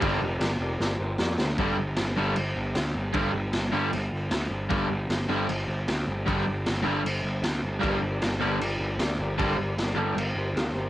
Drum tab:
CC |x-x-----|x-x-x-x-|x-x-x-x-|x-x-x-x-|
SD |--o-o-oo|--o---o-|--o---o-|--o---o-|
BD |o-------|o-------|o-------|o-------|

CC |x-x-x-x-|x-x-x-x-|x-x-x-x-|
SD |--o---o-|--o---o-|--o---o-|
BD |o-------|o-------|o-------|